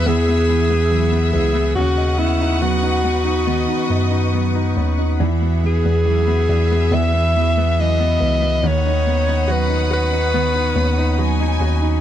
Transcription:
Already playing: E3 F#3 B3 E4 G#4 E5 F#5 B5 E6
0.06 E2 E3 G#4
0.28 B3 E4
0.49 E3 B3
0.70 B3 G#4
0.91 E3 F#3 E5
1.12 B3 E4
1.33 C#2 E3 B3 G#4
1.55 B3
1.75 D#2 C#3 F#4 B4 F#5 C#6 D#6
1.98 D#5
2.18 B3 C#4 E4
2.40 D#4 B4
2.61 F#3 B3 F#4
2.83 D#4
3.04 B3 C#4
3.24 D#4
3.46 D#3 B3 B4 D#5
3.68 D#4
3.90 F#2 B3 C#4
4.11 D#4 B4
4.34 F#3 B3
4.55 D#4
4.77 D#2 B3 C#4
4.98 D#4
5.20 E2 E3 G#4 E5 B5
5.42 B3 F#4
5.63 E3 B3 G#4
5.85 E2 B3 G#4
6.05 E3 F#3
6.27 B3 F#4
6.49 E2 E3 B3
6.71 B3 F#4
6.92 E2 E3 G#4 E5
7.14 B3 F#4
7.36 E3 B3
7.58 B3 G#4
7.79 E3 F#3 D#5
8.00 B3 F#4
8.20 C#2 E3 B3
8.42 B3 F#4
8.63 D#2 D#3 B4 C#5 F#5 D#6
8.85 D#4
9.07 B3 C#4
9.28 D#4 B4
9.48 F#3 F#4
9.52 B4
9.69 D#4
9.90 F#4 B4
10.12 D#4
10.34 D#3 B3 B4
10.55 D#4
10.76 D#2 B3 C#4
10.97 D#4 B4
11.18 F#3 F#4 G#5
11.39 D#4
11.60 D#2 C#4 F#4
11.82 D#4

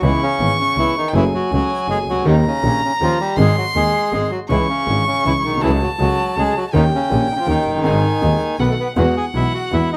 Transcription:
0.01 C#2 C#3 E3 B3 C#4 E4 G#4 C#6
0.22 C#3 C#4
0.39 G#1 G#2 E3 B3 C#4 E4 G#4
0.60 C#3 C#4
0.76 C#2 C#3 E3 B3 C#4 E4 G#4
0.97 D#3 D#4
1.08 G5
1.14 F#1 F#2 E3 F#3 A3 C#4 E4 F#4 G#4 G#5
1.34 F#3 F#4
1.51 C#2 C#3 F#3 A3 C#4 F#4 G#4
1.88 F#1 F#2 F#3 G#3 A3 C#4 F#4 G#4
2.07 C#2 F#3 F#4
2.12 C2
2.16 C#2
2.21 D2
2.25 D#2 D#3 A#3 C#4 D#4 G4 A#5
2.47 C#3 C#4
2.63 A#1 A#2 C#3 D#3 A#3 C#4 D#4 G4
2.84 C#3 C#4
3.00 D#2 D#3 F3 A#3 C#4 D#4 F4 G4
3.20 G3 G4
3.37 G#1 G#2 D#3 G#3 C4 D#4 G#4 C6
3.57 F#3 F#4
3.74 D#1 D#2 D#3 G#3 C4 D#4 G#4
4.12 G#1 G#2 D#3 G#3 C4 D#4 G#4
4.30 F#3 F#4
4.48 C#2 C#3 E3 G#3 C#4 E4 G#4 C#6
4.68 C#3 C#4
4.86 G#1 G#2 E3 G#3 C#4 E4 G#4
5.06 C#3 C#4
5.24 C#2 C#3 E3 G#3 C#4 E4 G#4
5.38 E4
5.44 B1 D#3 D#4
5.48 A#1
5.53 B1
5.57 C2 A5
5.61 C#2 C#3 E3 F#3 A3 C#4 E4 F#4 G#4
5.81 F#3 F#4
5.98 C#2 C#3 F#3 A3 C#4 F#4 G#4
6.36 C#2 C#3 F#3 G#3 A3 C#4 F#4 G#4
6.56 F#3 F#4
6.73 D#2 D#3 A#3 C#4 D#4 G4 G5
6.94 C#3 C#4
7.10 A#1 A#2 D#3 A#3 C#4 D#4 G4
7.30 C#3 C#4 D#4
7.35 C#3 C#4
7.39 F3 F4
7.46 D#2 D#3 A#3 C#4 D#4 G4
7.67 F1 F#1
7.75 F#1
7.79 G1
7.83 G#1 G#2 D#3 G#3 C4 D#4 G#4 G#5
8.21 D#1 D#2 D#3 G#3 C4 D#4 G#4
8.59 B1 B2 D#3 A3 B3 D#4 F#4 A4 B4 F#5
8.70 A3 A4
8.79 B3 B4
8.96 E2 E3 G#3 B3 E4 F#4 G#4 F#5
9.16 G#4 G#5
9.34 B1 B2 E3 G#3 B3 E4 F#4 G#4 E5
9.54 F#4 F#5
9.71 E2 E3 G#3 B3 E4 F#4 G#4 E5
9.93 D#4 D#5

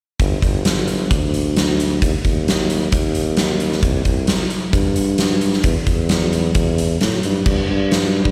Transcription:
0.20 G1, kick, closed hi-hat
0.42 G1, kick, closed hi-hat
0.65 snare, closed hi-hat
0.88 closed hi-hat
1.11 D2, kick, closed hi-hat
1.34 closed hi-hat
1.57 snare, closed hi-hat
1.80 closed hi-hat
2.02 D#2, kick, closed hi-hat
2.25 D#2, kick, closed hi-hat
2.48 snare, closed hi-hat
2.70 closed hi-hat
2.92 D#2, kick, closed hi-hat
3.15 closed hi-hat
3.37 snare, closed hi-hat
3.60 closed hi-hat
3.72 snare
3.83 C2, kick, closed hi-hat
4.05 C2, kick, closed hi-hat
4.27 snare, closed hi-hat
4.50 closed hi-hat
4.73 G2, kick, closed hi-hat
4.96 closed hi-hat
5.18 snare, closed hi-hat
5.41 closed hi-hat
5.53 snare
5.64 E2, kick, closed hi-hat
5.87 E2, kick, closed hi-hat
6.09 snare, closed hi-hat
6.33 closed hi-hat
6.55 E2, kick, closed hi-hat
6.78 closed hi-hat
7.01 A2, snare, closed hi-hat
7.23 G2, closed hi-hat
7.46 G2, kick, crash
7.70 G2
7.91 snare, open hi-hat
8.25 G2, kick

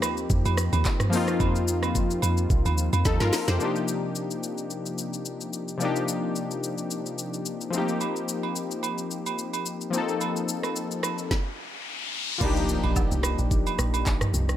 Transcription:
Already playing: F3 A#3 C4 D#4 G4
0.02 D#2, cross-stick, high agogo, shaker
0.17 shaker
0.30 F2, kick, shaker
0.45 F2, high agogo, shaker
0.57 cross-stick, shaker
0.73 D#2, high agogo, shaker
0.85 kick, clap, shaker
1.00 cross-stick, mid tom, shaker
1.10 F3 A#3 C4, open hi-hat, shaker
1.15 D#4 F4
1.28 cross-stick, shaker
1.40 F2, kick, high agogo, shaker
1.56 shaker
1.68 shaker
1.83 cross-stick, high agogo, shaker
1.95 kick, shaker
2.11 shaker
2.22 F2, high agogo, shaker
2.37 shaker
2.50 C2, kick, shaker
2.65 D#2, high agogo, shaker
2.78 shaker
2.93 F2, high agogo, shaker
3.05 D#2 D#4 A4, kick, snare, shaker
3.20 G2 F4 A#4, snare, shaker
3.33 snare, open hi-hat, shaker
3.48 F2 G4 C5, snare, shaker
3.57 C3 F3 A#3, shaker
3.62 D4 D#4 G4
3.76 shaker
3.88 shaker
4.15 shaker
4.31 shaker
4.43 shaker
4.58 shaker
4.70 shaker
4.86 shaker
4.98 shaker
5.13 shaker
5.25 shaker
5.41 shaker
5.53 shaker
5.68 shaker
5.78 C3 F3 A#3, shaker
5.82 D4 D#4 G4
5.96 shaker
6.08 shaker
6.36 shaker
6.51 shaker
6.63 shaker
6.78 shaker
6.91 shaker
7.06 shaker
7.18 shaker
7.34 shaker
7.46 shaker
7.61 shaker
7.70 F3 A3 C4, shaker
7.76 A#3 D#4 G4
7.88 shaker
8.01 high agogo, shaker
8.16 shaker
8.28 shaker
8.43 high agogo
8.56 shaker
8.71 shaker
8.83 high agogo, shaker
8.98 shaker
9.11 shaker
9.26 high agogo, shaker
9.38 shaker
9.53 high agogo, shaker
9.66 shaker
9.81 shaker
9.90 F3 A#3 C4, shaker
9.96 D#4 A4
10.09 shaker
10.21 riser, high agogo, shaker
10.36 shaker
10.49 shaker
10.63 cross-stick, high agogo, shaker
10.76 shaker
10.91 shaker
11.03 cross-stick, high agogo, shaker
11.18 shaker
11.31 kick, snare
12.38 C2 F3 A#3 D4, kick, crash, impact, high agogo, shaker
12.44 D#4 G4
12.56 shaker
12.69 shaker
12.84 A#1, high agogo
12.96 kick, low woodblock, shaker
13.11 C2, shaker
13.23 cross-stick, high agogo, shaker
13.38 A#1, shaker
13.51 kick, shaker
13.67 high agogo, shaker
13.79 A#1, cross-stick, shaker
13.94 high agogo, shaker
14.06 kick, clap, shaker
14.21 cross-stick, mid tom, shaker
14.34 C2, shaker
14.49 cross-stick, shaker

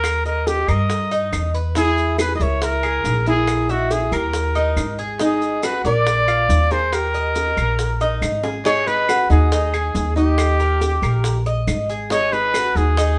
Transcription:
Already playing: D#2 A#4
0.04 high bongo, claves, maracas
0.25 A#4 D#5, high bongo, maracas
0.47 G4, high bongo, maracas
0.68 G2 A#4 D#5, high bongo, claves, maracas
0.90 high bongo, maracas
1.11 D#4, high bongo, maracas
1.32 E2, high bongo, low bongo, claves, maracas
1.54 B4, maracas
1.75 E4 G#4, high bongo, maracas
1.97 high bongo, maracas
2.18 G#4 B4, high bongo, claves, maracas
2.35 B4 D#5
2.40 C#2 A#4 C#5 E5, high bongo, maracas
2.62 E4 A#4, high bongo, maracas
2.83 G#4, high bongo, claves, maracas
3.04 A#1, high bongo, low bongo, maracas
3.26 E4 G#4 A#4, maracas
3.48 high bongo, claves, maracas
3.69 D#4 F#4 E5, high bongo, maracas
3.91 E4 G#4, high bongo, maracas
4.12 D#2 G4 A#4, high bongo, claves, maracas
4.33 high bongo, maracas
4.55 D#4, high bongo, maracas
4.76 G#1, high bongo, low bongo, claves, maracas
4.99 G#4, maracas
5.20 D#4 G#4, high bongo, maracas
5.42 high bongo, maracas
5.63 F#4 G#4 B4, high bongo, claves, maracas
5.84 A#1 A#4 D5, high bongo, maracas
6.07 high bongo, maracas
6.28 F4, high bongo, claves, maracas
6.49 D#2, high bongo, low bongo, maracas
6.71 G#4 A#4 C5, maracas
6.92 G4 A#4, high bongo, claves, maracas
7.14 D#5, high bongo, maracas
7.35 high bongo, maracas
7.57 A#1 A#4, high bongo, claves, maracas
7.79 high bongo, maracas
8.01 D#4, high bongo, maracas
8.22 G#1, high bongo, low bongo, claves, maracas
8.43 G#4, high bongo, maracas
8.65 D#4 G#4 C#5, high bongo, maracas
8.87 G#4 B4, high bongo, maracas
9.09 F#4, high bongo, claves, maracas
9.30 D#2 D#4 G#4, high bongo, maracas
9.52 D#4, high bongo, maracas
9.73 G#4, high bongo, claves, maracas
9.94 D#2, high bongo, low bongo, maracas
10.16 D#4 G4 D#5, maracas
10.38 high bongo, claves, maracas
10.60 A#4, high bongo, maracas
10.81 G4, high bongo, maracas
11.02 A#1 A#4, high bongo, claves, maracas
11.24 high bongo, maracas
11.46 D#5, high bongo, maracas
11.67 G#1, high bongo, low bongo, claves, maracas
11.89 G#4, maracas
12.10 D#4 G#4 C#5, high bongo, maracas
12.32 G#4 B4, high bongo, maracas
12.54 F#4, high bongo, claves, maracas
12.75 D#2 D#4 G#4, high bongo, maracas
12.97 D#4, high bongo, maracas

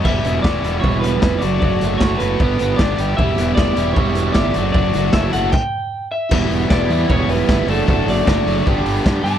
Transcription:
0.05 E1 E2 B2 E3 G3 B3 E4 E5, kick, crash
0.23 E1 B3 E4, closed hi-hat
0.28 E3 G3
0.42 E1 E3 G3 F#4 D5, kick, snare
0.47 B3 E4
0.63 E1 E3 G3 B3 E4, closed hi-hat
0.80 E1 C#5
0.84 E2 B2 E3 G3 B3 E4, kick
1.00 B3 B4, closed hi-hat
1.22 F1 E3 G3 B3 E4, kick, snare
1.39 F#1 D4 F#4 D5, closed hi-hat
1.43 F#3 A3
1.59 F#1 F#3 A3 D4 D5, kick
1.64 F#4
1.81 F#1 A3 D4 F#4, closed hi-hat
1.98 F#1 F#3 C#5, kick, snare
2.02 A3 D4 F#4
2.18 F#1 D4 E4 F#4 B4, closed hi-hat
2.23 A3
2.39 G1 G2 D3 G3 B3 D4 G4, kick
2.59 G1 B3, closed hi-hat
2.76 G1 G3 B3 D4 G4 D5, kick, snare
2.97 G1 G3 B3 D4 G4, closed hi-hat
3.17 E1 E2 B2 E3 G3 E4 G4 E5 F#5, kick
3.37 E1 E3 G3 B3 E4 G4, closed hi-hat
3.55 E1 E3 G3 E4 D5, kick, snare
3.59 G4
3.76 E1 E3 G3 E4 G4, closed hi-hat
3.94 E1 E2 B2 E3 G3 E4 C#5, kick
3.98 G4
4.15 B3, closed hi-hat
4.33 G1 E3 G3 E4 G4 D5, kick, snare
4.53 F#1 F#3 A3 D4 F#4 D5, closed hi-hat
4.72 F#1 F#3 A3 D4 D5, kick
4.76 F#4
4.93 F#1 F#3 A3 D4 F#4, closed hi-hat
5.13 F#1 F#3 A3 D4 E4 F#4 E5, kick, snare
5.33 F#1 A3 D4 F#4 F#5, closed hi-hat
5.52 G5, kick, crash
6.11 E5
6.29 E1 E2 B2 E3 G3 B3 E4 G4 F#5, kick, crash
6.33 E4
6.51 E1, open hi-hat
6.70 E1 E2 B2 E3 G3 B3 E4 D5, kick, snare
6.90 E2 B2 E3 G3 B3 E4, open hi-hat
7.09 E1 E2 B2 E3 G3 B3 E4 C#5, kick
7.28 E1 B4, open hi-hat
7.48 G1 E2 B2 E3 G3 B3 E4, kick, snare
7.67 F#1 F#3 A3 D4 F#4 A4 D5, open hi-hat
7.87 F#1 F#3 A3 D4 F#4 A4, kick
8.06 F#1 D5, open hi-hat
8.26 F#1 F#3 A3 D4 F#4, kick, snare
8.46 F#1 F#3 A3 D4 F#4, open hi-hat
8.65 G1 G2 D3 G3 B3 D4 G4 D5 B5, kick
8.85 G1, open hi-hat
9.05 G2 D3 G3 B3 D4 G4, kick, snare
9.23 G2 D3 G3 B3 D4 G4 A5, snare, open hi-hat

